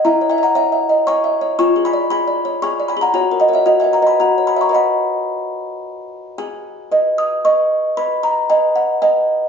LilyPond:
\new Staff \with { instrumentName = "Music box" } { \time 3/4 \key b \major \tempo 4 = 114 << { <e'' ais''>8 <e'' gis''>16 <fis'' ais''>16 <e'' gis''>4 <gis'' cis'''>4 | <aes'' cis'''>8 <aes'' ces'''>8 <aes'' ces'''>4 <aes'' cis'''>8 <aes'' ces'''>16 <fis'' ais''>16 | <cis'' gis''>8 <dis'' fis''>16 <cis'' e''>16 <dis'' fis''>16 <e'' gis''>16 <fis'' ais''>16 <gis'' b''>16 <fis'' ais''>8 <gis'' b''>16 <ais'' cis'''>16 | <fis'' b''>2 r4 |
\key gis \minor gis''4. dis'''8 cis'''4 | b''8 ais''8 gis''8 fis''8 gis''4 | } \\ { \tuplet 3/2 { e'8 cis''8 e''8 cis''8 e''8 dis''8 cis''8 e''8 cis''8 } | \tuplet 3/2 { f'8 aes'8 d''8 aes'8 d''8 cis''8 aes'8 d''8 aes'8 } | \tuplet 3/2 { fis'8 ais'8 <ais' cis''>8 fis'8 b'8 <b' dis''>8 fis'8 cis''8 <cis'' e''>8 } | <b' dis''>2. |
gis'4 <b' dis''>4 <b' dis''>4 | b'4 <b' dis''>4 <b' dis''>4 | } >> }